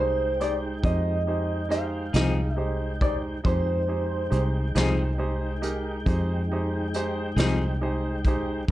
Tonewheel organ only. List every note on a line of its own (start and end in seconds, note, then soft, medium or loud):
0.00 3.41 G#3 medium
0.00 3.41 D#4 medium
0.00 3.41 G5 medium
3.45 8.65 G#3 medium
3.45 8.65 D#4 medium
3.45 8.65 G5 medium
8.68 8.71 D#4 medium